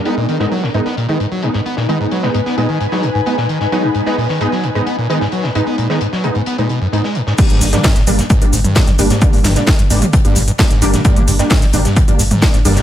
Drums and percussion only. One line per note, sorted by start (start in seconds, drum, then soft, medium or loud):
0.05 closed hi-hat medium
0.29 closed hi-hat medium
0.40 snare soft
0.52 open hi-hat medium
0.64 snare soft
0.75 closed hi-hat medium
0.86 snare soft
0.98 closed hi-hat medium
1.09 closed hi-hat soft
1.20 closed hi-hat medium
1.43 closed hi-hat medium
1.53 snare soft
1.66 closed hi-hat medium
1.77 snare medium
1.89 closed hi-hat medium
2.11 closed hi-hat medium
2.23 snare soft
2.34 closed hi-hat medium
2.47 snare soft
2.58 closed hi-hat medium
2.80 closed hi-hat medium
2.92 snare soft
3.03 closed hi-hat medium
3.27 closed hi-hat medium
3.38 snare soft
3.49 closed hi-hat medium
3.60 snare soft
3.73 closed hi-hat medium
3.95 closed hi-hat medium
4.06 snare soft
4.19 open hi-hat medium
4.29 snare soft
4.41 closed hi-hat medium
4.53 snare soft
4.64 closed hi-hat medium
4.76 closed hi-hat soft
4.87 closed hi-hat medium
5.10 closed hi-hat medium
5.21 snare soft
5.32 closed hi-hat medium
5.44 snare medium
5.55 closed hi-hat medium
5.78 closed hi-hat medium
5.90 snare soft
6.01 closed hi-hat medium
6.13 snare soft
6.24 closed hi-hat medium
6.35 closed hi-hat soft
6.46 closed hi-hat medium
6.58 closed hi-hat soft
6.69 closed hi-hat medium
6.93 closed hi-hat medium
7.04 snare soft
7.15 closed hi-hat medium
7.27 snare soft
7.38 kick loud
7.38 closed hi-hat medium
7.38 closed hi-hat loud
7.38 crash loud
7.38 shaker soft
7.50 closed hi-hat medium
7.50 mid tom medium
7.50 shaker soft
7.61 closed hi-hat medium
7.61 open hi-hat loud
7.61 shaker medium
7.73 snare soft
7.73 closed hi-hat medium
7.73 mid tom medium
7.73 shaker soft
7.84 kick loud
7.84 snare loud
7.84 closed hi-hat medium
7.84 open hi-hat medium
7.84 shaker soft
7.96 snare soft
7.96 closed hi-hat medium
7.96 shaker soft
8.07 closed hi-hat medium
8.07 mid tom medium
8.07 open hi-hat loud
8.07 shaker medium
8.19 snare soft
8.19 closed hi-hat medium
8.19 shaker soft
8.30 kick loud
8.30 closed hi-hat medium
8.30 mid tom medium
8.30 shaker soft
8.41 closed hi-hat soft
8.41 closed hi-hat medium
8.41 shaker soft
8.53 closed hi-hat medium
8.53 open hi-hat loud
8.53 shaker medium
8.65 closed hi-hat medium
8.65 mid tom medium
8.65 shaker soft
8.76 kick loud
8.76 snare loud
8.76 closed hi-hat medium
8.76 shaker soft
8.87 snare soft
8.87 closed hi-hat medium
8.87 mid tom medium
8.87 shaker soft
8.99 closed hi-hat medium
8.99 open hi-hat loud
8.99 shaker medium
9.10 snare medium
9.10 closed hi-hat medium
9.10 shaker soft
9.22 kick loud
9.22 closed hi-hat medium
9.22 mid tom medium
9.22 shaker soft
9.33 open hi-hat medium
9.33 shaker soft
9.44 snare medium
9.44 closed hi-hat medium
9.44 mid tom loud
9.44 open hi-hat loud
9.44 shaker medium
9.56 snare soft
9.56 closed hi-hat medium
9.56 shaker soft
9.67 kick loud
9.67 snare loud
9.67 closed hi-hat medium
9.67 shaker soft
9.78 snare soft
9.78 closed hi-hat medium
9.78 mid tom medium
9.78 shaker soft
9.90 closed hi-hat medium
9.90 open hi-hat loud
9.90 shaker medium
10.02 closed hi-hat soft
10.02 closed hi-hat medium
10.02 mid tom loud
10.02 shaker soft
10.13 kick loud
10.13 closed hi-hat medium
10.13 shaker soft
10.25 closed hi-hat medium
10.25 closed hi-hat soft
10.25 shaker soft
10.35 closed hi-hat medium
10.35 mid tom medium
10.35 open hi-hat loud
10.35 shaker medium
10.48 closed hi-hat medium
10.48 shaker soft
10.59 kick loud
10.59 snare loud
10.59 closed hi-hat medium
10.59 mid tom loud
10.59 open hi-hat medium
10.59 shaker soft
10.71 snare soft
10.71 closed hi-hat medium
10.71 shaker soft
10.82 closed hi-hat medium
10.82 open hi-hat loud
10.82 shaker medium
10.94 snare soft
10.94 closed hi-hat medium
10.94 mid tom medium
10.94 shaker soft
11.05 kick loud
11.05 closed hi-hat medium
11.05 shaker soft
11.16 closed hi-hat medium
11.16 mid tom loud
11.16 shaker soft
11.28 closed hi-hat medium
11.28 open hi-hat loud
11.28 shaker medium
11.39 snare soft
11.39 closed hi-hat medium
11.39 shaker soft
11.50 kick loud
11.50 snare loud
11.50 closed hi-hat medium
11.50 mid tom medium
11.50 open hi-hat medium
11.50 shaker soft
11.62 snare soft
11.62 closed hi-hat medium
11.62 shaker soft
11.73 closed hi-hat medium
11.73 mid tom loud
11.73 open hi-hat loud
11.73 shaker medium
11.85 snare soft
11.85 closed hi-hat medium
11.85 shaker soft
11.96 kick loud
11.96 closed hi-hat medium
11.96 shaker soft
12.08 closed hi-hat soft
12.08 closed hi-hat medium
12.08 mid tom medium
12.08 shaker soft
12.19 closed hi-hat medium
12.19 open hi-hat loud
12.19 shaker medium
12.31 closed hi-hat medium
12.31 mid tom loud
12.31 shaker soft
12.42 kick loud
12.42 snare loud
12.42 closed hi-hat medium
12.42 shaker soft
12.54 snare soft
12.54 closed hi-hat medium
12.54 shaker soft
12.65 closed hi-hat medium
12.65 mid tom medium
12.65 open hi-hat loud
12.65 shaker medium
12.77 snare medium
12.77 closed hi-hat medium
12.77 shaker soft